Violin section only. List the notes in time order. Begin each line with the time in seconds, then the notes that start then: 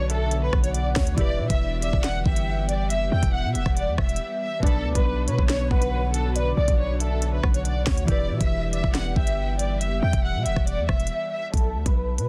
0.10 A4
0.43 B4
0.64 C#5
0.75 D5
0.96 C#5
1.18 D5
1.50 E5
1.82 E5
2.04 F#5
2.26 E5
2.69 D5
2.90 E5
3.12 G5
3.34 F#5
3.56 E5
3.77 D5
3.98 E5
4.41 E5
4.63 A4
4.95 B4
5.28 B4
5.49 C#5
5.71 B4
6.14 A4
6.36 B4
6.58 D5
6.79 C#5
7.00 A4
7.34 B4
7.55 C#5
7.66 D5
7.87 C#5
8.08 D5
8.41 E5
8.73 E5
8.94 F#5
9.17 E5
9.59 D5
9.81 E5
10.03 G5
10.24 F#5
10.46 E5
10.67 D5
10.89 E5
11.32 E5
11.54 A4
11.86 B4
12.18 B4